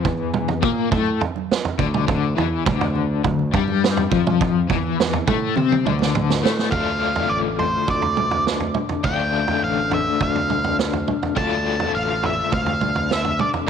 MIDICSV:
0, 0, Header, 1, 5, 480
1, 0, Start_track
1, 0, Key_signature, -1, "minor"
1, 0, Tempo, 580271
1, 1722, Time_signature, 4, 2, 24, 8
1, 11332, End_track
2, 0, Start_track
2, 0, Title_t, "Lead electric guitar"
2, 0, Program_c, 0, 29
2, 5552, Note_on_c, 0, 77, 91
2, 6034, Note_on_c, 0, 74, 83
2, 6051, Note_off_c, 0, 77, 0
2, 6100, Note_off_c, 0, 74, 0
2, 6282, Note_on_c, 0, 72, 73
2, 6528, Note_off_c, 0, 72, 0
2, 6537, Note_on_c, 0, 74, 70
2, 6976, Note_off_c, 0, 74, 0
2, 7483, Note_on_c, 0, 79, 99
2, 7971, Note_off_c, 0, 79, 0
2, 7974, Note_on_c, 0, 77, 81
2, 8191, Note_off_c, 0, 77, 0
2, 8222, Note_on_c, 0, 76, 82
2, 8436, Note_off_c, 0, 76, 0
2, 8460, Note_on_c, 0, 77, 75
2, 8897, Note_off_c, 0, 77, 0
2, 9406, Note_on_c, 0, 81, 98
2, 9851, Note_off_c, 0, 81, 0
2, 9884, Note_on_c, 0, 77, 78
2, 10129, Note_off_c, 0, 77, 0
2, 10140, Note_on_c, 0, 76, 84
2, 10366, Note_off_c, 0, 76, 0
2, 10369, Note_on_c, 0, 77, 77
2, 10857, Note_off_c, 0, 77, 0
2, 10861, Note_on_c, 0, 76, 79
2, 11087, Note_off_c, 0, 76, 0
2, 11090, Note_on_c, 0, 74, 66
2, 11154, Note_off_c, 0, 74, 0
2, 11332, End_track
3, 0, Start_track
3, 0, Title_t, "Overdriven electric guitar"
3, 0, Program_c, 1, 29
3, 35, Note_on_c, 1, 52, 100
3, 511, Note_off_c, 1, 52, 0
3, 511, Note_on_c, 1, 58, 102
3, 749, Note_off_c, 1, 58, 0
3, 757, Note_on_c, 1, 57, 97
3, 992, Note_off_c, 1, 57, 0
3, 1481, Note_on_c, 1, 50, 103
3, 1703, Note_off_c, 1, 50, 0
3, 1713, Note_on_c, 1, 50, 94
3, 1947, Note_off_c, 1, 50, 0
3, 1951, Note_on_c, 1, 52, 102
3, 2189, Note_off_c, 1, 52, 0
3, 2199, Note_on_c, 1, 50, 85
3, 2670, Note_off_c, 1, 50, 0
3, 2680, Note_on_c, 1, 50, 75
3, 2873, Note_off_c, 1, 50, 0
3, 2916, Note_on_c, 1, 55, 102
3, 3392, Note_off_c, 1, 55, 0
3, 3401, Note_on_c, 1, 53, 97
3, 3874, Note_off_c, 1, 53, 0
3, 3879, Note_on_c, 1, 52, 105
3, 4352, Note_off_c, 1, 52, 0
3, 4360, Note_on_c, 1, 57, 115
3, 4593, Note_off_c, 1, 57, 0
3, 4606, Note_on_c, 1, 60, 99
3, 4836, Note_off_c, 1, 60, 0
3, 4844, Note_on_c, 1, 50, 95
3, 5315, Note_off_c, 1, 50, 0
3, 5320, Note_on_c, 1, 57, 100
3, 5546, Note_off_c, 1, 57, 0
3, 5550, Note_on_c, 1, 50, 67
3, 5559, Note_on_c, 1, 57, 77
3, 5568, Note_on_c, 1, 62, 71
3, 5575, Note_on_c, 1, 65, 89
3, 7469, Note_off_c, 1, 50, 0
3, 7472, Note_on_c, 1, 50, 79
3, 7481, Note_off_c, 1, 57, 0
3, 7484, Note_on_c, 1, 57, 71
3, 7489, Note_off_c, 1, 62, 0
3, 7493, Note_on_c, 1, 62, 81
3, 7499, Note_off_c, 1, 65, 0
3, 7502, Note_on_c, 1, 65, 83
3, 9386, Note_off_c, 1, 50, 0
3, 9389, Note_on_c, 1, 50, 67
3, 9401, Note_off_c, 1, 57, 0
3, 9404, Note_on_c, 1, 57, 86
3, 9408, Note_off_c, 1, 62, 0
3, 9412, Note_on_c, 1, 62, 76
3, 9416, Note_off_c, 1, 65, 0
3, 9419, Note_on_c, 1, 65, 89
3, 11301, Note_off_c, 1, 50, 0
3, 11304, Note_on_c, 1, 50, 73
3, 11314, Note_off_c, 1, 57, 0
3, 11322, Note_off_c, 1, 62, 0
3, 11331, Note_off_c, 1, 65, 0
3, 11332, Note_off_c, 1, 50, 0
3, 11332, End_track
4, 0, Start_track
4, 0, Title_t, "Picked electric bass"
4, 0, Program_c, 2, 34
4, 45, Note_on_c, 2, 40, 92
4, 491, Note_off_c, 2, 40, 0
4, 521, Note_on_c, 2, 46, 90
4, 744, Note_off_c, 2, 46, 0
4, 758, Note_on_c, 2, 45, 84
4, 983, Note_off_c, 2, 45, 0
4, 1482, Note_on_c, 2, 38, 76
4, 1705, Note_off_c, 2, 38, 0
4, 1724, Note_on_c, 2, 38, 87
4, 1946, Note_off_c, 2, 38, 0
4, 1959, Note_on_c, 2, 40, 94
4, 2183, Note_off_c, 2, 40, 0
4, 2205, Note_on_c, 2, 38, 102
4, 2650, Note_off_c, 2, 38, 0
4, 2684, Note_on_c, 2, 38, 73
4, 2906, Note_off_c, 2, 38, 0
4, 2925, Note_on_c, 2, 43, 104
4, 3370, Note_off_c, 2, 43, 0
4, 3406, Note_on_c, 2, 41, 92
4, 3850, Note_off_c, 2, 41, 0
4, 3887, Note_on_c, 2, 40, 97
4, 4331, Note_off_c, 2, 40, 0
4, 4366, Note_on_c, 2, 45, 80
4, 4587, Note_off_c, 2, 45, 0
4, 4603, Note_on_c, 2, 48, 82
4, 4825, Note_off_c, 2, 48, 0
4, 4846, Note_on_c, 2, 38, 96
4, 5290, Note_off_c, 2, 38, 0
4, 5320, Note_on_c, 2, 45, 77
4, 5543, Note_off_c, 2, 45, 0
4, 5559, Note_on_c, 2, 38, 78
4, 5928, Note_off_c, 2, 38, 0
4, 6038, Note_on_c, 2, 33, 83
4, 6408, Note_off_c, 2, 33, 0
4, 6521, Note_on_c, 2, 38, 85
4, 7259, Note_off_c, 2, 38, 0
4, 7479, Note_on_c, 2, 38, 77
4, 7849, Note_off_c, 2, 38, 0
4, 7964, Note_on_c, 2, 33, 77
4, 8332, Note_off_c, 2, 33, 0
4, 8448, Note_on_c, 2, 38, 77
4, 9183, Note_off_c, 2, 38, 0
4, 9405, Note_on_c, 2, 38, 79
4, 9772, Note_off_c, 2, 38, 0
4, 9885, Note_on_c, 2, 33, 83
4, 10252, Note_off_c, 2, 33, 0
4, 10365, Note_on_c, 2, 38, 82
4, 11101, Note_off_c, 2, 38, 0
4, 11332, End_track
5, 0, Start_track
5, 0, Title_t, "Drums"
5, 40, Note_on_c, 9, 43, 74
5, 41, Note_on_c, 9, 36, 87
5, 123, Note_off_c, 9, 43, 0
5, 124, Note_off_c, 9, 36, 0
5, 278, Note_on_c, 9, 47, 72
5, 361, Note_off_c, 9, 47, 0
5, 399, Note_on_c, 9, 43, 83
5, 482, Note_off_c, 9, 43, 0
5, 520, Note_on_c, 9, 36, 102
5, 525, Note_on_c, 9, 64, 67
5, 603, Note_off_c, 9, 36, 0
5, 608, Note_off_c, 9, 64, 0
5, 759, Note_on_c, 9, 43, 73
5, 760, Note_on_c, 9, 36, 94
5, 763, Note_on_c, 9, 63, 68
5, 842, Note_off_c, 9, 43, 0
5, 843, Note_off_c, 9, 36, 0
5, 846, Note_off_c, 9, 63, 0
5, 879, Note_on_c, 9, 63, 69
5, 962, Note_off_c, 9, 63, 0
5, 1002, Note_on_c, 9, 43, 78
5, 1084, Note_off_c, 9, 43, 0
5, 1123, Note_on_c, 9, 63, 69
5, 1123, Note_on_c, 9, 64, 61
5, 1206, Note_off_c, 9, 63, 0
5, 1206, Note_off_c, 9, 64, 0
5, 1253, Note_on_c, 9, 38, 72
5, 1336, Note_off_c, 9, 38, 0
5, 1363, Note_on_c, 9, 43, 75
5, 1446, Note_off_c, 9, 43, 0
5, 1480, Note_on_c, 9, 36, 104
5, 1482, Note_on_c, 9, 64, 75
5, 1563, Note_off_c, 9, 36, 0
5, 1564, Note_off_c, 9, 64, 0
5, 1605, Note_on_c, 9, 47, 67
5, 1688, Note_off_c, 9, 47, 0
5, 1723, Note_on_c, 9, 36, 93
5, 1729, Note_on_c, 9, 43, 74
5, 1806, Note_off_c, 9, 36, 0
5, 1811, Note_off_c, 9, 43, 0
5, 1968, Note_on_c, 9, 43, 68
5, 2051, Note_off_c, 9, 43, 0
5, 2203, Note_on_c, 9, 36, 105
5, 2207, Note_on_c, 9, 47, 82
5, 2286, Note_off_c, 9, 36, 0
5, 2290, Note_off_c, 9, 47, 0
5, 2324, Note_on_c, 9, 43, 80
5, 2407, Note_off_c, 9, 43, 0
5, 2442, Note_on_c, 9, 64, 71
5, 2524, Note_off_c, 9, 64, 0
5, 2683, Note_on_c, 9, 43, 80
5, 2684, Note_on_c, 9, 36, 73
5, 2693, Note_on_c, 9, 63, 67
5, 2765, Note_off_c, 9, 43, 0
5, 2767, Note_off_c, 9, 36, 0
5, 2776, Note_off_c, 9, 63, 0
5, 2805, Note_on_c, 9, 63, 61
5, 2888, Note_off_c, 9, 63, 0
5, 2925, Note_on_c, 9, 36, 92
5, 2927, Note_on_c, 9, 43, 87
5, 3008, Note_off_c, 9, 36, 0
5, 3010, Note_off_c, 9, 43, 0
5, 3041, Note_on_c, 9, 63, 73
5, 3041, Note_on_c, 9, 64, 66
5, 3124, Note_off_c, 9, 63, 0
5, 3124, Note_off_c, 9, 64, 0
5, 3178, Note_on_c, 9, 38, 76
5, 3261, Note_off_c, 9, 38, 0
5, 3284, Note_on_c, 9, 43, 80
5, 3367, Note_off_c, 9, 43, 0
5, 3396, Note_on_c, 9, 64, 62
5, 3405, Note_on_c, 9, 36, 97
5, 3479, Note_off_c, 9, 64, 0
5, 3487, Note_off_c, 9, 36, 0
5, 3530, Note_on_c, 9, 47, 73
5, 3613, Note_off_c, 9, 47, 0
5, 3647, Note_on_c, 9, 36, 94
5, 3653, Note_on_c, 9, 43, 86
5, 3730, Note_off_c, 9, 36, 0
5, 3735, Note_off_c, 9, 43, 0
5, 3886, Note_on_c, 9, 36, 91
5, 3888, Note_on_c, 9, 43, 76
5, 3969, Note_off_c, 9, 36, 0
5, 3970, Note_off_c, 9, 43, 0
5, 4136, Note_on_c, 9, 38, 74
5, 4219, Note_off_c, 9, 38, 0
5, 4245, Note_on_c, 9, 43, 81
5, 4328, Note_off_c, 9, 43, 0
5, 4362, Note_on_c, 9, 64, 65
5, 4364, Note_on_c, 9, 36, 98
5, 4364, Note_on_c, 9, 47, 84
5, 4444, Note_off_c, 9, 64, 0
5, 4447, Note_off_c, 9, 36, 0
5, 4447, Note_off_c, 9, 47, 0
5, 4597, Note_on_c, 9, 63, 65
5, 4608, Note_on_c, 9, 48, 50
5, 4679, Note_off_c, 9, 63, 0
5, 4690, Note_off_c, 9, 48, 0
5, 4713, Note_on_c, 9, 63, 66
5, 4732, Note_on_c, 9, 48, 54
5, 4795, Note_off_c, 9, 63, 0
5, 4814, Note_off_c, 9, 48, 0
5, 4850, Note_on_c, 9, 47, 68
5, 4933, Note_off_c, 9, 47, 0
5, 4956, Note_on_c, 9, 63, 69
5, 4956, Note_on_c, 9, 64, 61
5, 4980, Note_on_c, 9, 38, 61
5, 5039, Note_off_c, 9, 63, 0
5, 5039, Note_off_c, 9, 64, 0
5, 5063, Note_off_c, 9, 38, 0
5, 5087, Note_on_c, 9, 45, 85
5, 5170, Note_off_c, 9, 45, 0
5, 5213, Note_on_c, 9, 38, 66
5, 5296, Note_off_c, 9, 38, 0
5, 5317, Note_on_c, 9, 64, 66
5, 5337, Note_on_c, 9, 38, 90
5, 5400, Note_off_c, 9, 64, 0
5, 5420, Note_off_c, 9, 38, 0
5, 5452, Note_on_c, 9, 38, 84
5, 5534, Note_off_c, 9, 38, 0
5, 5560, Note_on_c, 9, 36, 88
5, 5560, Note_on_c, 9, 43, 77
5, 5642, Note_off_c, 9, 36, 0
5, 5643, Note_off_c, 9, 43, 0
5, 5919, Note_on_c, 9, 43, 74
5, 6002, Note_off_c, 9, 43, 0
5, 6277, Note_on_c, 9, 43, 70
5, 6360, Note_off_c, 9, 43, 0
5, 6516, Note_on_c, 9, 43, 67
5, 6519, Note_on_c, 9, 36, 84
5, 6599, Note_off_c, 9, 43, 0
5, 6602, Note_off_c, 9, 36, 0
5, 6634, Note_on_c, 9, 43, 66
5, 6717, Note_off_c, 9, 43, 0
5, 6757, Note_on_c, 9, 47, 67
5, 6839, Note_off_c, 9, 47, 0
5, 6875, Note_on_c, 9, 43, 71
5, 6958, Note_off_c, 9, 43, 0
5, 7004, Note_on_c, 9, 38, 66
5, 7087, Note_off_c, 9, 38, 0
5, 7115, Note_on_c, 9, 43, 60
5, 7198, Note_off_c, 9, 43, 0
5, 7232, Note_on_c, 9, 47, 68
5, 7315, Note_off_c, 9, 47, 0
5, 7354, Note_on_c, 9, 43, 74
5, 7437, Note_off_c, 9, 43, 0
5, 7474, Note_on_c, 9, 43, 71
5, 7479, Note_on_c, 9, 36, 85
5, 7556, Note_off_c, 9, 43, 0
5, 7561, Note_off_c, 9, 36, 0
5, 7839, Note_on_c, 9, 43, 72
5, 7922, Note_off_c, 9, 43, 0
5, 8200, Note_on_c, 9, 43, 73
5, 8283, Note_off_c, 9, 43, 0
5, 8443, Note_on_c, 9, 36, 84
5, 8443, Note_on_c, 9, 43, 73
5, 8525, Note_off_c, 9, 43, 0
5, 8526, Note_off_c, 9, 36, 0
5, 8566, Note_on_c, 9, 43, 66
5, 8648, Note_off_c, 9, 43, 0
5, 8684, Note_on_c, 9, 47, 60
5, 8766, Note_off_c, 9, 47, 0
5, 8803, Note_on_c, 9, 43, 75
5, 8886, Note_off_c, 9, 43, 0
5, 8927, Note_on_c, 9, 38, 67
5, 9009, Note_off_c, 9, 38, 0
5, 9043, Note_on_c, 9, 43, 72
5, 9126, Note_off_c, 9, 43, 0
5, 9163, Note_on_c, 9, 47, 67
5, 9245, Note_off_c, 9, 47, 0
5, 9286, Note_on_c, 9, 43, 76
5, 9369, Note_off_c, 9, 43, 0
5, 9399, Note_on_c, 9, 43, 67
5, 9403, Note_on_c, 9, 36, 86
5, 9481, Note_off_c, 9, 43, 0
5, 9486, Note_off_c, 9, 36, 0
5, 9758, Note_on_c, 9, 43, 71
5, 9841, Note_off_c, 9, 43, 0
5, 10119, Note_on_c, 9, 43, 73
5, 10202, Note_off_c, 9, 43, 0
5, 10356, Note_on_c, 9, 43, 68
5, 10362, Note_on_c, 9, 36, 91
5, 10438, Note_off_c, 9, 43, 0
5, 10444, Note_off_c, 9, 36, 0
5, 10473, Note_on_c, 9, 43, 66
5, 10556, Note_off_c, 9, 43, 0
5, 10597, Note_on_c, 9, 47, 63
5, 10680, Note_off_c, 9, 47, 0
5, 10716, Note_on_c, 9, 43, 66
5, 10799, Note_off_c, 9, 43, 0
5, 10844, Note_on_c, 9, 38, 65
5, 10927, Note_off_c, 9, 38, 0
5, 10956, Note_on_c, 9, 43, 62
5, 11039, Note_off_c, 9, 43, 0
5, 11079, Note_on_c, 9, 47, 65
5, 11161, Note_off_c, 9, 47, 0
5, 11197, Note_on_c, 9, 43, 71
5, 11280, Note_off_c, 9, 43, 0
5, 11332, End_track
0, 0, End_of_file